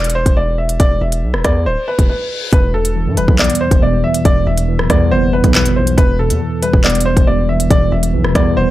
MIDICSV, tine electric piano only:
0, 0, Header, 1, 2, 480
1, 0, Start_track
1, 0, Key_signature, 1, "minor"
1, 0, Tempo, 431655
1, 888, Time_signature, 4, 2, 24, 8
1, 9681, End_track
2, 0, Start_track
2, 0, Title_t, "Tine electric piano"
2, 0, Program_c, 0, 4
2, 2807, Note_on_c, 0, 40, 98
2, 3046, Control_c, 0, 64, 127
2, 3047, Note_on_c, 0, 47, 74
2, 3289, Note_on_c, 0, 52, 95
2, 3529, Note_on_c, 0, 55, 84
2, 3765, Note_on_c, 0, 59, 109
2, 3994, Note_off_c, 0, 40, 0
2, 4007, Note_on_c, 0, 40, 81
2, 4237, Note_off_c, 0, 47, 0
2, 4250, Note_on_c, 0, 47, 93
2, 4478, Note_off_c, 0, 52, 0
2, 4491, Note_on_c, 0, 52, 81
2, 4712, Note_off_c, 0, 40, 0
2, 4726, Note_on_c, 0, 40, 97
2, 4729, Note_off_c, 0, 55, 0
2, 4957, Note_off_c, 0, 47, 0
2, 4967, Note_off_c, 0, 59, 0
2, 4970, Note_on_c, 0, 47, 80
2, 5193, Note_off_c, 0, 52, 0
2, 5206, Note_on_c, 0, 52, 88
2, 5449, Note_on_c, 0, 55, 90
2, 5689, Note_on_c, 0, 59, 114
2, 5915, Note_off_c, 0, 40, 0
2, 5928, Note_on_c, 0, 40, 75
2, 6156, Note_off_c, 0, 47, 0
2, 6170, Note_on_c, 0, 47, 96
2, 6396, Note_off_c, 0, 52, 0
2, 6409, Note_on_c, 0, 52, 81
2, 6633, Note_off_c, 0, 40, 0
2, 6649, Note_off_c, 0, 47, 0
2, 6649, Note_off_c, 0, 52, 0
2, 6649, Note_off_c, 0, 55, 0
2, 6649, Note_off_c, 0, 59, 0
2, 6664, Control_c, 0, 64, 0
2, 6873, Control_c, 0, 64, 127
2, 6891, Note_on_c, 0, 47, 80
2, 7125, Note_on_c, 0, 52, 99
2, 7371, Note_on_c, 0, 55, 87
2, 7609, Note_on_c, 0, 59, 108
2, 7846, Note_on_c, 0, 40, 76
2, 8076, Note_off_c, 0, 47, 0
2, 8090, Note_on_c, 0, 47, 96
2, 8322, Note_off_c, 0, 52, 0
2, 8335, Note_on_c, 0, 52, 85
2, 8557, Note_off_c, 0, 40, 0
2, 8570, Note_off_c, 0, 55, 0
2, 8570, Note_on_c, 0, 40, 102
2, 8799, Note_off_c, 0, 47, 0
2, 8808, Note_off_c, 0, 59, 0
2, 8813, Note_on_c, 0, 47, 82
2, 9035, Note_off_c, 0, 52, 0
2, 9049, Note_on_c, 0, 52, 96
2, 9288, Note_on_c, 0, 55, 84
2, 9531, Note_on_c, 0, 59, 106
2, 9681, Note_off_c, 0, 40, 0
2, 9681, Note_off_c, 0, 47, 0
2, 9681, Note_off_c, 0, 52, 0
2, 9681, Note_off_c, 0, 55, 0
2, 9681, Note_off_c, 0, 59, 0
2, 9681, End_track
0, 0, End_of_file